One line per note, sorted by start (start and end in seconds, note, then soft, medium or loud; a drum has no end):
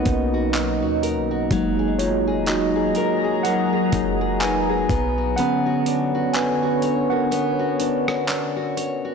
0.00 1.47 B2 medium
0.00 1.47 F#3 medium
0.00 1.52 A#3 medium
0.00 1.62 B3 medium
0.00 1.52 C#4 soft
0.00 1.52 D#4 medium
0.00 4.86 D#4 medium
0.00 0.33 F#4 medium
0.00 0.99 F#4 medium
0.00 1.02 A#4 medium
0.00 1.53 A#4 medium
0.00 0.98 D#5 medium
0.00 1.53 F#5 loud
0.06 0.84 B1 loud
0.06 0.54 D#4 medium
0.06 kick loud
0.06 closed hi-hat medium
0.34 0.82 F#4 medium
0.54 1.99 D#4 medium
0.54 clap loud
0.54 closed hi-hat medium
0.82 1.18 D#2 loud
0.82 1.30 F#4 medium
1.03 1.82 A#4 medium
1.03 closed hi-hat medium
1.17 1.49 B1 loud
1.31 1.79 F#4 medium
1.51 2.92 F#1 loud
1.51 4.86 F#3 medium
1.51 3.44 F#3 medium
1.51 2.92 G#3 medium
1.51 2.92 A#3 medium
1.51 2.93 D#4 medium
1.51 4.86 G#4 medium
1.51 4.86 A#5 medium
1.51 kick loud
1.51 closed hi-hat medium
1.79 2.26 G#4 medium
1.99 2.47 D#4 medium
1.99 2.45 F4 medium
1.99 2.49 C#5 medium
1.99 closed hi-hat medium
2.27 2.75 G#4 medium
2.46 3.92 D#4 medium
2.46 3.41 F#4 medium
2.46 3.47 D#5 medium
2.46 clap loud
2.46 closed hi-hat medium
2.76 3.23 G#4 medium
2.95 5.01 A#4 medium
2.95 closed hi-hat medium
3.24 3.71 G#4 medium
3.43 6.94 F#3 medium
3.43 4.38 A#4 medium
3.43 4.37 F#5 loud
3.43 closed hi-hat medium
3.73 4.20 G#4 medium
3.92 4.86 F#1 loud
3.92 4.40 D#4 medium
3.92 kick loud
3.92 closed hi-hat medium
4.21 4.68 G#4 medium
4.40 5.01 D#4 medium
4.40 5.35 B4 medium
4.40 5.40 G#5 loud
4.40 clap loud
4.40 closed hi-hat medium
4.69 5.01 G#4 medium
4.89 5.36 B1 loud
4.89 9.14 D3 medium
4.89 9.14 B3 medium
4.89 5.37 B3 medium
4.89 9.14 C#5 medium
4.89 kick loud
4.89 closed hi-hat medium
5.18 5.66 F#4 medium
5.36 6.79 D3 medium
5.36 7.31 B3 medium
5.36 6.79 B3 medium
5.36 6.80 C#4 medium
5.36 6.31 B4 medium
5.36 6.37 F#5 loud
5.36 closed hi-hat medium
5.66 6.14 F#4 medium
5.86 6.34 D4 medium
5.86 closed hi-hat medium
6.15 6.62 F#4 medium
6.33 7.79 D4 medium
6.33 7.08 B4 medium
6.33 7.13 G#5 loud
6.33 clap loud
6.33 closed hi-hat medium
6.63 7.11 F#4 medium
6.82 8.76 C#5 medium
6.82 closed hi-hat medium
7.10 7.59 F#4 medium
7.10 8.73 A#4 medium
7.10 8.72 F#5 medium
7.31 9.14 B3 medium
7.31 closed hi-hat medium
7.59 8.08 F#4 medium
7.80 8.27 D4 medium
7.80 closed hi-hat medium
8.08 8.56 F#4 medium
8.08 cross-stick loud
8.28 9.14 D4 medium
8.28 clap loud
8.28 closed hi-hat medium
8.56 9.04 F#4 medium
8.77 9.14 C#5 medium
8.77 closed hi-hat medium
9.05 9.14 F#4 medium